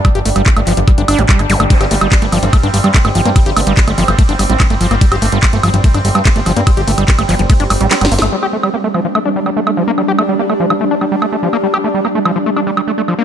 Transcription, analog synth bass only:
\new Staff \with { instrumentName = "Analog synth bass" } { \clef bass \time 4/4 \key c \dorian \tempo 4 = 145 r16 g,,16 g,,16 g,,16 r16 g,,16 g,,16 g,,16 r16 g,,16 g,,16 a,,16 r16 g,,16 g,,16 g,,16 | r16 g,,16 g,,16 g,,16 r16 g,,16 g,,16 g,,16 r16 g,,16 g,,16 g,16 r16 g,,16 g,,16 g,16 | r16 g,,16 g,,16 g,,16 r16 g,,16 g,,16 g,,16 r16 g,,16 g,,16 a,,16 r16 g,,16 g,,16 g,,16 | r16 g,,16 g,,16 g,,16 r16 g,,16 g,,16 g,,16 r16 g,,16 g,,16 g,16 r16 g,,16 g,,16 g,16 |
r16 g,,16 g,,16 g,,16 r16 g,,16 g,,16 g,,16 r16 g,,16 g,,16 a,,16 r16 g,,16 g,,16 g,,16 | r1 | r1 | r1 | }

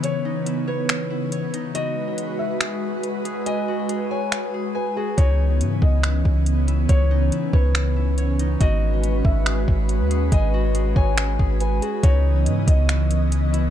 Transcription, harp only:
\new Staff \with { instrumentName = "Harp" } { \time 4/4 \key cis \minor \tempo 4 = 140 <e' cis''>8 dis'8 e'8 cis''4 e'8 cis''8 dis'8 | fis'2 gis'4. gis'8 | gis''8 fis'8 gis'8 gis''4 gis'8 gis''8 fis'8 | dis'2 e'4. e'8 |
cis''8 dis'8 e'8 cis''4 e'8 cis''8 dis'8 | fis'2 gis'4. gis'8 | gis''8 fis'8 gis'8 gis''4 gis'8 gis''8 fis'8 | dis'2 e'4. e'8 | }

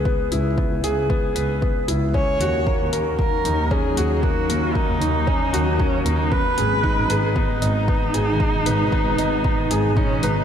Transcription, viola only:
\new Staff \with { instrumentName = "Viola" } { \time 4/4 \key dis \phrygian \tempo 4 = 115 r1 | cis''4. r8 ais'4 gis'4 | fis'4 dis'2 cis'8 dis'8 | b'4. gis'8 dis'2~ |
dis'2. cis'8 dis'8 | }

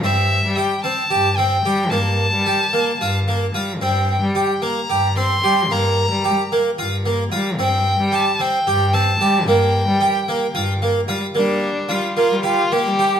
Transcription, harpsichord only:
\new Staff \with { instrumentName = "Harpsichord" } { \time 7/8 \key g \minor \tempo 4 = 111 c'4 g'8 c'8 g'8 c'8 g'8 | bes4 g'8 bes8 f'8 bes8 f'8 | c'4 g'8 bes8 g'8 c'8 g'8 | bes4 g'8 bes8 f'8 bes8 f'8 |
c'4 g'8 c'8 g'8 c'8 g'8 | bes4 g'8 bes8 f'8 bes8 f'8 | bes4 f'8 bes8 g'8 bes8 g'8 | }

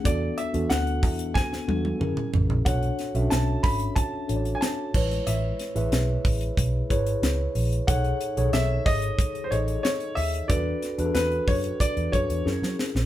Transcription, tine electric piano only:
\new Staff \with { instrumentName = "Tine electric piano" } { \time 4/4 \key a \major \tempo 4 = 92 <b d' fis' a'>8 r16 <b d' fis' a'>4~ <b d' fis' a'>16 r8 <b d' fis' a'>8 <cis' e' gis' ais'>8. r16 | <d' fis' a' cis''>8 r16 <cis' d' fis' a' e''>4~ <cis' d' fis' a' e''>16 r8 <d' fis' a' cis'' d''>4 <gis e' b' cis''>8~ | <gis e' b' cis''>8 r16 <e' gis' b' e''>4~ <e' gis' b' e''>16 r8 <e' gis' b' cis''>4~ <e' gis' b' cis''>16 r16 | <dis' gis' a' cis''>8 r16 <dis gis' a' cis''>4~ <dis gis' a' cis''>16 r8 <dis' gis' a' dis''>4~ <dis' gis' a' dis''>16 r16 |
<d' fis' a' b'>8 r16 <d' fis' gis' a' b'>4~ <d' fis' gis' a' b'>16 r8 <d' fis' a' cis''>8 <cis' e' gis' ais'>8. r16 | }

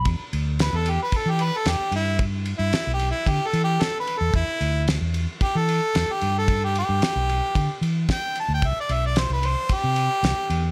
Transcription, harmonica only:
\new Staff \with { instrumentName = "Harmonica" } { \time 4/4 \key e \minor \tempo 4 = 112 r4 b'16 a'16 g'16 b'16 a'16 g'16 b'16 a'16 g'8 e'8 | \tuplet 3/2 { r4 e'8~ e'8 g'8 e'8 g'8 a'8 g'8 a'8 b'8 a'8 } | e'4 r4 g'16 a'4 g'8 a'16~ | a'16 g'16 g'2 r8 g''8 a''16 g''16 |
e''16 d''16 e''16 d''16 c''16 b'16 c''8 g'2 | }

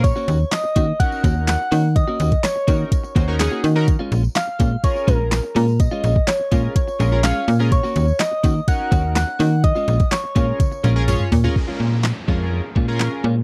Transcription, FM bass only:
\new Staff \with { instrumentName = "FM bass" } { \clef bass \time 4/4 \key bes \minor \tempo 4 = 125 bes,8 ees,8 r8 ees8 r8 ees,4 ees8~ | ees8 ees,8 r8 ees8 r8 ees,4 ees8~ | ees8 bes,,8 r8 bes,8 r8 bes,,4 bes,8~ | bes,8 bes,,8 r8 bes,8 r8 bes,,4 bes,8~ |
bes,8 ees,8 r8 ees8 r8 ees,4 ees8~ | ees8 bes,,8 r8 bes,8 r8 bes,,4 bes,8 | r8 bes,4 f,4 bes,4 bes,8 | }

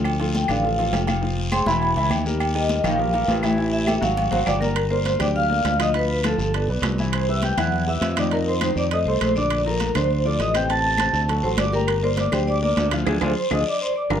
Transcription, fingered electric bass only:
\new Staff \with { instrumentName = "Fingered electric bass" } { \clef bass \time 4/4 \key g \minor \tempo 4 = 202 d,4. a,,4. f,,4~ | f,,4. e,,4 cis,8 ees,4~ | ees,4. bes,,4. a,,4~ | a,,4. aes,,4 aes,,8 g,,4~ |
g,,4. d,4. d,4~ | d,4. g,,4 b,,8 c,4~ | c,4. e,4. f,4~ | f,4. f,4 c,8 bes,,4~ |
bes,,4. d,4. a,,4~ | a,,4. d,4 a,,8 g,,4~ | g,,4. d,4. d,4 | d,8 d,8 r8 d,8 r4. g,,8 | }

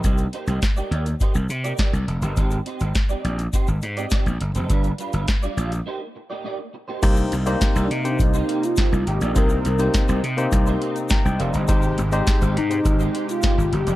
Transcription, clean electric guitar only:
\new Staff \with { instrumentName = "Clean electric guitar" } { \time 4/4 \key c \minor \tempo 4 = 103 <bes ees' g' c''>16 r16 <bes ees' g' c''>16 <bes ees' g' c''>16 r16 <bes ees' g' d''>16 <bes ees' g' d''>16 r16 <bes ees' g' c''>16 r8 <bes ees' g' d''>16 <bes ees' g' d''>16 r8 <bes ees' g' c''>16 | <c' ees' g' c''>16 r16 <c' ees' g' c''>16 <c' ees' g' c''>16 r16 <c' ees' g' d''>16 <c' ees' g' d''>16 r16 <c' ees' g' c''>16 r8 <c' ees' g' d''>16 <c' ees' g' d''>16 r8 <c' ees' g' c''>16 | <g d' f' b'>16 r16 <g d' f' b'>16 <g d' f' b'>16 r16 <g d' f' d''>16 <g d' f' d''>16 r16 <bes ees' g' c''>16 r8 <bes ees' g' d''>16 <bes ees' g' d''>16 r8 <bes ees' g' c''>16 | <bes ees' g' c''>16 r8 <bes ees' g' d''>16 r16 <bes ees' g' c''>16 r8. <bes ees' g' c''>16 <bes ees' g' c''>16 r16 <bes ees' g' c''>16 r8 <bes ees' g' d''>16 |
<bes ees' g' c''>16 r8 <bes ees' g' d''>16 r16 <bes ees' g' c''>16 r8. <bes ees' g' c''>16 <bes ees' g' c''>16 r8. <bes ees' g' c''>16 <bes ees' g' d''>16 | <aes ees' g' c''>16 r8 <aes ees' g' d''>16 r16 <aes ees' g' c''>16 r8. <aes ees' g' c''>16 <aes ees' g' c''>16 r16 <aes ees' g' c''>16 r8 <aes ees' g' d''>16 | }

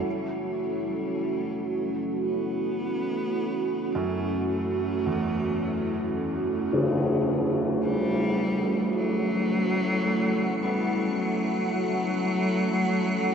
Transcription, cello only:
\new Staff \with { instrumentName = "Cello" } { \clef bass \time 4/4 \key fis \phrygian \tempo 4 = 54 fis4 fis4 b4. a8 | a2 r4 g4 | fis4. g8 fis2 | }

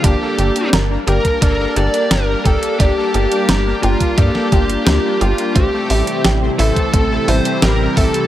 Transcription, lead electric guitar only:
\new Staff \with { instrumentName = "Lead electric guitar" } { \time 4/4 \key g \dorian \tempo 4 = 87 g'4 r8 bes'8 bes'8 d''8 bes'8 a'8 | g'4. f'8 g'4 g'8 f'8 | g'4 r8 a'8 a'8 c''8 bes'8 a'8 | }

